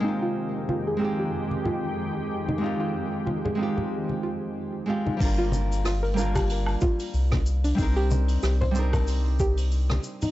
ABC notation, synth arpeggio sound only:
X:1
M:4/4
L:1/16
Q:"Swing 16ths" 1/4=93
K:Fdor
V:1 name="Synth arpeggio sound"
E F z2 F A A G z2 F z4 E | E F z2 F A A G z2 F z4 E | D F z2 F B B G z2 F z4 D | E G z2 G c c B z2 G z4 E |]